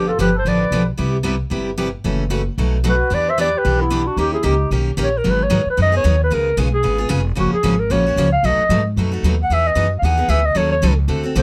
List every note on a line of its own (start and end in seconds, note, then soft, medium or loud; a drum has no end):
0.00 0.13 G1 medium
0.00 0.10 F3 medium
0.00 0.10 B3 medium
0.00 0.10 D4 medium
0.00 0.10 G4 medium
0.00 0.11 G4 medium
0.07 0.18 F4 medium
0.07 0.19 A4 medium
0.18 0.41 G1 medium
0.18 0.28 D3 medium
0.18 0.29 F3 medium
0.18 0.29 B3 medium
0.18 0.29 D4 medium
0.18 0.34 G4 medium
0.18 0.29 G4 medium
0.18 0.36 B4 medium
0.35 0.44 A4 medium
0.35 0.50 C5 medium
0.45 0.67 A1 medium
0.45 0.63 D3 medium
0.45 0.63 F3 medium
0.45 0.64 B3 medium
0.45 0.64 D4 medium
0.45 0.64 G4 medium
0.45 0.87 B4 medium
0.45 0.88 D5 medium
0.71 0.94 B1 medium
0.71 0.82 D3 medium
0.71 0.82 F3 medium
0.71 0.82 B3 medium
0.71 0.82 D4 medium
0.71 0.82 G4 medium
0.97 1.41 C2 medium
0.97 1.16 C3 medium
0.97 1.16 G3 medium
0.97 1.16 B3 medium
0.97 1.16 E4 medium
0.97 1.16 G4 medium
1.23 1.34 C3 medium
1.23 1.34 G3 medium
1.23 1.34 B3 medium
1.23 1.35 E4 medium
1.23 1.34 G4 medium
1.50 1.94 G1 medium
1.50 1.69 C3 medium
1.50 1.69 G3 medium
1.50 1.69 B3 medium
1.50 1.69 E4 medium
1.50 1.69 G4 medium
1.77 1.88 C3 medium
1.77 1.88 G3 medium
1.77 1.88 B3 medium
1.77 1.88 E4 medium
1.77 1.88 G4 medium
2.04 2.47 F#1 medium
2.04 2.23 C#3 medium
2.04 2.23 E3 medium
2.04 2.23 A3 medium
2.04 2.23 C#4 medium
2.04 2.23 F#4 medium
2.30 2.41 C#3 medium
2.30 2.41 E3 medium
2.30 2.41 A3 medium
2.30 2.41 C#4 medium
2.30 2.41 F#4 medium
2.58 3.00 B1 medium
2.58 2.76 B2 medium
2.58 2.76 F#3 medium
2.58 2.76 A3 medium
2.58 2.77 D#4 medium
2.58 2.77 F#4 medium
2.84 2.94 B2 medium
2.84 2.95 F#3 medium
2.84 2.94 A3 medium
2.84 2.95 D#4 medium
2.84 2.95 F#4 medium
2.88 3.11 F#4 medium
2.88 3.16 B4 medium
3.10 3.54 E2 medium
3.10 3.29 E3 medium
3.10 3.29 B3 medium
3.10 3.29 D4 medium
3.10 3.30 G4 medium
3.10 3.27 B4 medium
3.14 3.31 D5 medium
3.28 3.39 C5 medium
3.28 3.40 E5 medium
3.38 3.48 E3 medium
3.38 3.48 B3 medium
3.38 3.48 D4 medium
3.38 3.49 G4 medium
3.38 3.55 B4 medium
3.38 3.60 D5 medium
3.56 3.80 G4 medium
3.56 3.83 B4 medium
3.65 4.07 B1 medium
3.65 3.83 E3 medium
3.65 3.83 B3 medium
3.65 3.83 D4 medium
3.65 3.83 G4 medium
3.79 4.06 B3 medium
3.79 4.09 E4 medium
3.90 4.01 E3 medium
3.90 4.01 B3 medium
3.90 4.01 D4 medium
3.90 4.02 G4 medium
4.05 4.17 D4 medium
4.05 4.19 F#4 medium
4.17 4.38 D#2 medium
4.17 4.36 D#3 medium
4.17 4.36 A#3 medium
4.17 4.36 C#4 medium
4.17 4.31 D#4 medium
4.17 4.36 G4 medium
4.17 4.32 G4 medium
4.17 4.36 A#4 medium
4.32 4.43 E4 medium
4.32 4.47 G#4 medium
4.42 4.67 C#2 medium
4.42 4.54 D#3 medium
4.42 4.54 A#3 medium
4.42 4.54 C#4 medium
4.42 4.70 D#4 medium
4.42 4.54 G4 medium
4.42 4.72 G4 medium
4.42 4.54 A#4 medium
4.71 4.94 B1 medium
4.71 4.89 D#3 medium
4.71 4.90 A#3 medium
4.71 4.90 C#4 medium
4.71 4.90 G4 medium
4.71 4.90 A#4 medium
4.97 5.20 A#1 medium
4.97 5.07 D#3 medium
4.97 5.08 A#3 medium
4.97 5.08 C#4 medium
4.97 5.08 G4 medium
4.97 5.08 A#4 medium
5.02 5.19 C#5 medium
5.18 5.32 A#4 medium
5.24 5.50 G#1 medium
5.24 5.42 D#3 medium
5.24 5.43 F#3 medium
5.24 5.43 B3 medium
5.24 5.43 D#4 medium
5.24 5.43 G#4 medium
5.30 5.45 B4 medium
5.43 5.68 C#5 medium
5.50 5.65 G#2 medium
5.50 5.60 D#3 medium
5.50 5.61 F#3 medium
5.50 5.61 B3 medium
5.50 5.61 D#4 medium
5.50 5.61 G#4 medium
5.66 5.79 B4 medium
5.66 muted upright bass stroke soft
5.77 6.03 F#2 medium
5.77 5.92 D#3 medium
5.77 5.92 F#3 medium
5.77 5.92 B3 medium
5.77 5.92 D#4 medium
5.77 5.91 G#4 medium
5.82 5.94 D#5 medium
5.92 6.03 B3 soft
5.92 6.04 D#4 medium
5.92 6.03 G#4 medium
5.96 6.19 C#5 medium
6.04 6.30 D#2 medium
6.04 6.14 D#3 medium
6.04 6.14 F#3 medium
6.04 6.14 B3 medium
6.04 6.15 D#4 medium
6.04 6.15 G#4 medium
6.23 6.35 B4 medium
6.30 6.57 C#2 medium
6.30 6.49 C#3 medium
6.30 6.49 G#3 medium
6.30 6.49 B3 medium
6.30 6.50 F4 medium
6.30 6.49 G#4 medium
6.30 6.59 A#4 medium
6.57 6.83 B1 medium
6.57 6.67 C#3 medium
6.57 6.68 G#3 medium
6.57 6.67 B3 medium
6.57 6.68 F4 medium
6.57 6.68 G#4 medium
6.74 7.23 G#4 medium
6.83 7.10 G#1 medium
6.83 6.98 C#3 medium
6.83 6.98 G#3 medium
6.83 6.98 B3 medium
6.83 6.98 F4 medium
6.83 6.97 G#4 medium
6.98 7.08 B3 soft
6.98 7.08 F4 medium
6.98 7.09 G#4 medium
7.09 7.36 F1 medium
7.09 7.20 C#3 medium
7.09 7.20 G#3 medium
7.09 7.20 B3 medium
7.09 7.20 F4 medium
7.09 7.20 G#4 medium
7.35 7.51 F#1 medium
7.35 7.54 C#3 medium
7.35 7.55 F3 medium
7.35 7.55 A#3 medium
7.35 7.55 C#4 medium
7.35 7.55 F#4 medium
7.35 7.52 F#4 medium
7.53 7.81 G#4 medium
7.53 muted upright bass stroke soft
7.63 7.90 G#1 medium
7.63 7.73 C#3 medium
7.63 7.74 F3 medium
7.63 7.74 A#3 medium
7.63 7.74 C#4 loud
7.63 7.74 F#4 medium
7.79 7.93 A#4 medium
7.90 8.16 A#1 medium
7.90 8.04 C#3 medium
7.90 8.05 F3 medium
7.90 8.05 A#3 medium
7.90 8.05 C#4 medium
7.90 8.05 F#4 medium
7.90 8.31 C#5 loud
8.06 8.17 A#3 soft
8.06 8.17 C#4 medium
8.06 8.17 F#4 medium
8.16 8.42 C#2 medium
8.16 8.27 C#3 medium
8.16 8.28 F3 medium
8.16 8.28 A#3 medium
8.16 8.28 C#4 medium
8.16 8.28 F#4 medium
8.32 8.47 F5 medium
8.43 8.57 B1 medium
8.43 8.62 B2 medium
8.43 8.62 F#3 medium
8.43 8.62 A3 medium
8.43 8.62 D#4 medium
8.43 8.62 F#4 medium
8.43 8.86 D#5 loud
8.58 muted upright bass stroke soft
8.69 8.95 G#2 medium
8.69 8.80 B2 medium
8.69 8.80 F#3 medium
8.69 8.81 A3 medium
8.69 8.81 D#4 medium
8.69 8.81 F#4 medium
8.96 9.22 F#2 medium
8.96 9.11 B2 medium
8.96 9.12 F#3 medium
8.96 9.12 A3 medium
8.96 9.12 D#4 medium
8.96 9.10 F#4 medium
9.12 9.24 A3 soft
9.12 9.24 D#4 medium
9.12 9.23 F#4 medium
9.23 9.49 D#2 medium
9.23 9.34 B2 medium
9.23 9.34 F#3 medium
9.23 9.34 A3 medium
9.23 9.34 D#4 medium
9.23 9.34 F#4 medium
9.43 9.55 F#5 medium
9.50 9.75 E2 medium
9.50 9.68 E3 medium
9.50 9.69 B3 medium
9.50 9.69 D#4 medium
9.50 9.69 G#4 medium
9.54 9.68 E5 medium
9.67 9.92 D#5 medium
9.75 10.02 F#2 medium
9.75 9.86 E3 medium
9.75 9.86 B3 medium
9.75 9.87 D#4 medium
9.75 9.87 G#4 medium
9.99 10.28 D#2 medium
9.99 10.06 F5 medium
10.03 10.17 E3 medium
10.03 10.18 B3 medium
10.03 10.17 D#4 medium
10.03 10.16 G#4 medium
10.03 10.31 F#5 medium
10.18 10.28 B3 soft
10.18 10.29 D#4 medium
10.18 10.28 G#4 medium
10.28 10.55 D2 medium
10.28 10.39 E3 medium
10.28 10.39 B3 medium
10.28 10.40 D#4 medium
10.28 10.40 G#4 medium
10.28 10.47 E5 medium
10.45 10.59 D#5 medium
10.55 10.81 D#2 medium
10.55 10.73 D#3 medium
10.55 10.74 F#3 medium
10.55 10.74 C#4 medium
10.55 10.74 D#4 medium
10.55 10.74 A4 medium
10.55 10.71 C#5 medium
10.71 10.96 C#5 medium
10.82 11.07 C#2 medium
10.82 10.92 D#3 medium
10.82 10.93 F#3 medium
10.82 10.93 C#4 medium
10.82 10.93 D#4 medium
10.82 10.93 A4 medium
11.08 11.34 D2 medium
11.08 11.23 D3 medium
11.08 11.23 A3 medium
11.08 11.23 C4 medium
11.08 11.23 F#4 medium
11.08 11.22 A4 medium
11.23 11.35 C4 medium
11.23 11.35 F#4 medium
11.23 11.35 A4 medium
11.35 11.42 B1 medium
11.35 11.42 D3 medium
11.35 11.42 A3 medium
11.35 11.42 C4 medium
11.35 11.42 F#4 medium
11.35 11.42 A4 medium
11.35 11.42 C5 medium